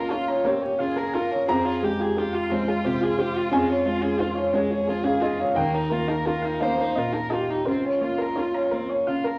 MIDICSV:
0, 0, Header, 1, 5, 480
1, 0, Start_track
1, 0, Tempo, 682594
1, 1044, Time_signature, 6, 3, 24, 8
1, 3912, Tempo, 702576
1, 6523, End_track
2, 0, Start_track
2, 0, Title_t, "Synth pluck"
2, 0, Program_c, 0, 84
2, 77, Note_on_c, 0, 73, 57
2, 147, Note_off_c, 0, 73, 0
2, 197, Note_on_c, 0, 82, 55
2, 268, Note_off_c, 0, 82, 0
2, 314, Note_on_c, 0, 70, 79
2, 386, Note_off_c, 0, 70, 0
2, 427, Note_on_c, 0, 73, 55
2, 502, Note_off_c, 0, 73, 0
2, 553, Note_on_c, 0, 77, 57
2, 627, Note_off_c, 0, 77, 0
2, 676, Note_on_c, 0, 70, 75
2, 750, Note_off_c, 0, 70, 0
2, 797, Note_on_c, 0, 77, 52
2, 871, Note_off_c, 0, 77, 0
2, 1043, Note_on_c, 0, 65, 78
2, 1116, Note_off_c, 0, 65, 0
2, 1283, Note_on_c, 0, 68, 56
2, 1355, Note_off_c, 0, 68, 0
2, 1406, Note_on_c, 0, 65, 83
2, 1477, Note_off_c, 0, 65, 0
2, 1523, Note_on_c, 0, 68, 56
2, 1595, Note_off_c, 0, 68, 0
2, 1639, Note_on_c, 0, 77, 54
2, 1712, Note_off_c, 0, 77, 0
2, 1759, Note_on_c, 0, 65, 79
2, 1831, Note_off_c, 0, 65, 0
2, 1884, Note_on_c, 0, 68, 57
2, 1954, Note_off_c, 0, 68, 0
2, 2001, Note_on_c, 0, 72, 56
2, 2072, Note_off_c, 0, 72, 0
2, 2116, Note_on_c, 0, 65, 75
2, 2187, Note_off_c, 0, 65, 0
2, 2240, Note_on_c, 0, 72, 56
2, 2310, Note_off_c, 0, 72, 0
2, 2472, Note_on_c, 0, 61, 79
2, 2544, Note_off_c, 0, 61, 0
2, 2714, Note_on_c, 0, 65, 59
2, 2785, Note_off_c, 0, 65, 0
2, 2832, Note_on_c, 0, 61, 84
2, 2903, Note_off_c, 0, 61, 0
2, 2946, Note_on_c, 0, 65, 51
2, 3019, Note_off_c, 0, 65, 0
2, 3061, Note_on_c, 0, 73, 56
2, 3135, Note_off_c, 0, 73, 0
2, 3187, Note_on_c, 0, 61, 86
2, 3260, Note_off_c, 0, 61, 0
2, 3306, Note_on_c, 0, 65, 57
2, 3380, Note_off_c, 0, 65, 0
2, 3427, Note_on_c, 0, 68, 59
2, 3501, Note_off_c, 0, 68, 0
2, 3544, Note_on_c, 0, 61, 82
2, 3618, Note_off_c, 0, 61, 0
2, 3665, Note_on_c, 0, 68, 56
2, 3739, Note_off_c, 0, 68, 0
2, 3905, Note_on_c, 0, 63, 78
2, 3979, Note_off_c, 0, 63, 0
2, 4143, Note_on_c, 0, 70, 58
2, 4217, Note_off_c, 0, 70, 0
2, 4262, Note_on_c, 0, 63, 79
2, 4336, Note_off_c, 0, 63, 0
2, 4385, Note_on_c, 0, 70, 56
2, 4458, Note_off_c, 0, 70, 0
2, 4500, Note_on_c, 0, 77, 58
2, 4574, Note_off_c, 0, 77, 0
2, 4620, Note_on_c, 0, 63, 77
2, 4694, Note_off_c, 0, 63, 0
2, 4741, Note_on_c, 0, 70, 51
2, 4815, Note_off_c, 0, 70, 0
2, 4862, Note_on_c, 0, 75, 56
2, 4935, Note_off_c, 0, 75, 0
2, 4978, Note_on_c, 0, 63, 76
2, 5053, Note_off_c, 0, 63, 0
2, 5099, Note_on_c, 0, 75, 60
2, 5173, Note_off_c, 0, 75, 0
2, 5341, Note_on_c, 0, 70, 71
2, 5415, Note_off_c, 0, 70, 0
2, 5585, Note_on_c, 0, 73, 55
2, 5658, Note_off_c, 0, 73, 0
2, 5701, Note_on_c, 0, 70, 79
2, 5776, Note_off_c, 0, 70, 0
2, 5821, Note_on_c, 0, 73, 54
2, 5896, Note_off_c, 0, 73, 0
2, 5948, Note_on_c, 0, 82, 54
2, 6021, Note_off_c, 0, 82, 0
2, 6063, Note_on_c, 0, 70, 75
2, 6138, Note_off_c, 0, 70, 0
2, 6187, Note_on_c, 0, 73, 52
2, 6261, Note_off_c, 0, 73, 0
2, 6308, Note_on_c, 0, 77, 51
2, 6382, Note_off_c, 0, 77, 0
2, 6426, Note_on_c, 0, 70, 75
2, 6502, Note_off_c, 0, 70, 0
2, 6523, End_track
3, 0, Start_track
3, 0, Title_t, "Viola"
3, 0, Program_c, 1, 41
3, 0, Note_on_c, 1, 65, 62
3, 320, Note_on_c, 1, 67, 54
3, 331, Note_off_c, 1, 65, 0
3, 563, Note_on_c, 1, 68, 53
3, 574, Note_off_c, 1, 67, 0
3, 813, Note_on_c, 1, 70, 59
3, 824, Note_off_c, 1, 68, 0
3, 1047, Note_off_c, 1, 70, 0
3, 1051, Note_on_c, 1, 68, 61
3, 1291, Note_on_c, 1, 67, 59
3, 1301, Note_off_c, 1, 68, 0
3, 1532, Note_on_c, 1, 65, 65
3, 1542, Note_off_c, 1, 67, 0
3, 3199, Note_on_c, 1, 68, 61
3, 3209, Note_off_c, 1, 65, 0
3, 3914, Note_off_c, 1, 68, 0
3, 3919, Note_on_c, 1, 70, 63
3, 4639, Note_on_c, 1, 72, 60
3, 4649, Note_off_c, 1, 70, 0
3, 4883, Note_on_c, 1, 70, 52
3, 4893, Note_off_c, 1, 72, 0
3, 5118, Note_on_c, 1, 67, 48
3, 5128, Note_off_c, 1, 70, 0
3, 5359, Note_on_c, 1, 65, 43
3, 5369, Note_off_c, 1, 67, 0
3, 6440, Note_off_c, 1, 65, 0
3, 6523, End_track
4, 0, Start_track
4, 0, Title_t, "Grand piano"
4, 0, Program_c, 2, 0
4, 0, Control_c, 2, 64, 127
4, 0, Note_on_c, 2, 37, 54
4, 0, Note_on_c, 2, 58, 43
4, 0, Note_on_c, 2, 70, 61
4, 82, Note_on_c, 2, 65, 42
4, 220, Note_off_c, 2, 58, 0
4, 283, Note_off_c, 2, 70, 0
4, 313, Note_on_c, 2, 58, 48
4, 319, Note_on_c, 2, 73, 78
4, 462, Note_off_c, 2, 65, 0
4, 556, Note_on_c, 2, 49, 42
4, 701, Note_off_c, 2, 58, 0
4, 807, Note_on_c, 2, 65, 42
4, 947, Note_off_c, 2, 49, 0
4, 1019, Note_off_c, 2, 37, 0
4, 1019, Note_off_c, 2, 73, 0
4, 1045, Note_on_c, 2, 82, 95
4, 1048, Note_off_c, 2, 65, 0
4, 1052, Note_on_c, 2, 41, 54
4, 1056, Control_c, 2, 64, 0
4, 1176, Control_c, 2, 64, 127
4, 1287, Note_on_c, 2, 56, 46
4, 1530, Note_on_c, 2, 67, 46
4, 1668, Note_off_c, 2, 56, 0
4, 1770, Note_on_c, 2, 56, 49
4, 1908, Note_off_c, 2, 67, 0
4, 2004, Note_on_c, 2, 48, 48
4, 2146, Note_off_c, 2, 56, 0
4, 2241, Note_on_c, 2, 67, 41
4, 2380, Note_off_c, 2, 48, 0
4, 2446, Note_off_c, 2, 82, 0
4, 2450, Note_off_c, 2, 41, 0
4, 2476, Note_off_c, 2, 67, 0
4, 2480, Note_on_c, 2, 80, 77
4, 2481, Note_on_c, 2, 41, 59
4, 2487, Control_c, 2, 64, 0
4, 2594, Control_c, 2, 64, 127
4, 2712, Note_on_c, 2, 56, 47
4, 2926, Note_off_c, 2, 80, 0
4, 2951, Note_on_c, 2, 65, 44
4, 2956, Note_on_c, 2, 72, 74
4, 3094, Note_off_c, 2, 56, 0
4, 3176, Note_off_c, 2, 72, 0
4, 3190, Note_on_c, 2, 56, 50
4, 3200, Note_on_c, 2, 73, 70
4, 3334, Note_off_c, 2, 65, 0
4, 3431, Note_on_c, 2, 53, 48
4, 3531, Note_off_c, 2, 73, 0
4, 3555, Note_on_c, 2, 77, 67
4, 3575, Note_off_c, 2, 56, 0
4, 3665, Note_off_c, 2, 77, 0
4, 3670, Note_on_c, 2, 65, 43
4, 3672, Note_on_c, 2, 75, 73
4, 3784, Note_off_c, 2, 75, 0
4, 3792, Note_on_c, 2, 77, 64
4, 3817, Note_off_c, 2, 53, 0
4, 3889, Note_off_c, 2, 41, 0
4, 3905, Note_off_c, 2, 77, 0
4, 3911, Note_on_c, 2, 79, 85
4, 3913, Note_off_c, 2, 65, 0
4, 3916, Note_on_c, 2, 39, 58
4, 3926, Control_c, 2, 64, 0
4, 4060, Control_c, 2, 64, 127
4, 4152, Note_on_c, 2, 58, 45
4, 4394, Note_on_c, 2, 65, 43
4, 4533, Note_off_c, 2, 58, 0
4, 4599, Note_off_c, 2, 79, 0
4, 4627, Note_on_c, 2, 77, 65
4, 4630, Note_on_c, 2, 58, 45
4, 4773, Note_off_c, 2, 65, 0
4, 4866, Note_on_c, 2, 46, 37
4, 5011, Note_off_c, 2, 58, 0
4, 5102, Note_on_c, 2, 65, 36
4, 5250, Note_off_c, 2, 46, 0
4, 5319, Note_off_c, 2, 77, 0
4, 5320, Note_off_c, 2, 39, 0
4, 5341, Note_on_c, 2, 72, 59
4, 5345, Note_off_c, 2, 65, 0
4, 5349, Note_on_c, 2, 37, 50
4, 5359, Control_c, 2, 64, 0
4, 5495, Control_c, 2, 64, 127
4, 5586, Note_on_c, 2, 58, 37
4, 5829, Note_on_c, 2, 65, 35
4, 5973, Note_off_c, 2, 58, 0
4, 6076, Note_on_c, 2, 58, 38
4, 6215, Note_off_c, 2, 65, 0
4, 6315, Note_on_c, 2, 49, 34
4, 6461, Note_off_c, 2, 58, 0
4, 6523, Note_off_c, 2, 37, 0
4, 6523, Note_off_c, 2, 49, 0
4, 6523, Note_off_c, 2, 72, 0
4, 6523, End_track
5, 0, Start_track
5, 0, Title_t, "Violin"
5, 0, Program_c, 3, 40
5, 0, Note_on_c, 3, 70, 48
5, 80, Note_on_c, 3, 65, 49
5, 91, Note_off_c, 3, 70, 0
5, 205, Note_on_c, 3, 61, 44
5, 216, Note_off_c, 3, 65, 0
5, 322, Note_on_c, 3, 60, 47
5, 332, Note_off_c, 3, 61, 0
5, 439, Note_on_c, 3, 61, 52
5, 450, Note_off_c, 3, 60, 0
5, 562, Note_on_c, 3, 65, 54
5, 572, Note_off_c, 3, 61, 0
5, 686, Note_on_c, 3, 70, 49
5, 696, Note_off_c, 3, 65, 0
5, 799, Note_on_c, 3, 65, 54
5, 810, Note_off_c, 3, 70, 0
5, 924, Note_on_c, 3, 61, 46
5, 934, Note_off_c, 3, 65, 0
5, 1041, Note_off_c, 3, 61, 0
5, 1045, Note_on_c, 3, 60, 61
5, 1164, Note_on_c, 3, 65, 54
5, 1174, Note_off_c, 3, 60, 0
5, 1296, Note_on_c, 3, 67, 54
5, 1306, Note_off_c, 3, 65, 0
5, 1413, Note_on_c, 3, 68, 50
5, 1424, Note_off_c, 3, 67, 0
5, 1532, Note_on_c, 3, 67, 49
5, 1543, Note_off_c, 3, 68, 0
5, 1649, Note_on_c, 3, 65, 50
5, 1660, Note_off_c, 3, 67, 0
5, 1767, Note_on_c, 3, 60, 52
5, 1778, Note_off_c, 3, 65, 0
5, 1887, Note_on_c, 3, 65, 53
5, 1898, Note_off_c, 3, 60, 0
5, 2010, Note_on_c, 3, 67, 59
5, 2020, Note_off_c, 3, 65, 0
5, 2131, Note_on_c, 3, 68, 51
5, 2141, Note_off_c, 3, 67, 0
5, 2245, Note_on_c, 3, 67, 56
5, 2255, Note_off_c, 3, 68, 0
5, 2369, Note_on_c, 3, 65, 50
5, 2379, Note_off_c, 3, 67, 0
5, 2480, Note_off_c, 3, 65, 0
5, 2485, Note_on_c, 3, 56, 66
5, 2598, Note_on_c, 3, 61, 56
5, 2608, Note_off_c, 3, 56, 0
5, 2716, Note_on_c, 3, 65, 55
5, 2726, Note_off_c, 3, 61, 0
5, 2832, Note_on_c, 3, 68, 53
5, 2843, Note_off_c, 3, 65, 0
5, 2955, Note_on_c, 3, 65, 51
5, 2966, Note_off_c, 3, 68, 0
5, 3083, Note_on_c, 3, 61, 49
5, 3094, Note_off_c, 3, 65, 0
5, 3202, Note_on_c, 3, 56, 53
5, 3212, Note_off_c, 3, 61, 0
5, 3309, Note_on_c, 3, 61, 51
5, 3320, Note_off_c, 3, 56, 0
5, 3437, Note_on_c, 3, 65, 51
5, 3448, Note_off_c, 3, 61, 0
5, 3552, Note_on_c, 3, 68, 53
5, 3562, Note_off_c, 3, 65, 0
5, 3671, Note_on_c, 3, 65, 53
5, 3681, Note_off_c, 3, 68, 0
5, 3794, Note_on_c, 3, 61, 47
5, 3805, Note_off_c, 3, 65, 0
5, 3912, Note_off_c, 3, 61, 0
5, 3916, Note_on_c, 3, 58, 63
5, 4036, Note_on_c, 3, 63, 52
5, 4046, Note_off_c, 3, 58, 0
5, 4156, Note_on_c, 3, 65, 54
5, 4166, Note_off_c, 3, 63, 0
5, 4276, Note_on_c, 3, 70, 46
5, 4287, Note_off_c, 3, 65, 0
5, 4397, Note_on_c, 3, 65, 47
5, 4407, Note_off_c, 3, 70, 0
5, 4517, Note_on_c, 3, 63, 44
5, 4527, Note_off_c, 3, 65, 0
5, 4638, Note_on_c, 3, 58, 45
5, 4649, Note_off_c, 3, 63, 0
5, 4760, Note_on_c, 3, 63, 45
5, 4770, Note_off_c, 3, 58, 0
5, 4880, Note_on_c, 3, 65, 48
5, 4890, Note_off_c, 3, 63, 0
5, 4992, Note_on_c, 3, 70, 44
5, 5003, Note_off_c, 3, 65, 0
5, 5116, Note_on_c, 3, 65, 43
5, 5126, Note_off_c, 3, 70, 0
5, 5236, Note_on_c, 3, 63, 39
5, 5246, Note_off_c, 3, 65, 0
5, 5351, Note_off_c, 3, 63, 0
5, 5355, Note_on_c, 3, 60, 49
5, 5473, Note_on_c, 3, 61, 45
5, 5483, Note_off_c, 3, 60, 0
5, 5589, Note_on_c, 3, 65, 44
5, 5599, Note_off_c, 3, 61, 0
5, 5723, Note_on_c, 3, 70, 40
5, 5733, Note_off_c, 3, 65, 0
5, 5830, Note_on_c, 3, 65, 41
5, 5840, Note_off_c, 3, 70, 0
5, 5952, Note_on_c, 3, 61, 39
5, 5963, Note_off_c, 3, 65, 0
5, 6072, Note_on_c, 3, 60, 44
5, 6082, Note_off_c, 3, 61, 0
5, 6197, Note_on_c, 3, 61, 41
5, 6207, Note_off_c, 3, 60, 0
5, 6309, Note_on_c, 3, 65, 46
5, 6320, Note_off_c, 3, 61, 0
5, 6441, Note_on_c, 3, 70, 41
5, 6451, Note_off_c, 3, 65, 0
5, 6523, Note_off_c, 3, 70, 0
5, 6523, End_track
0, 0, End_of_file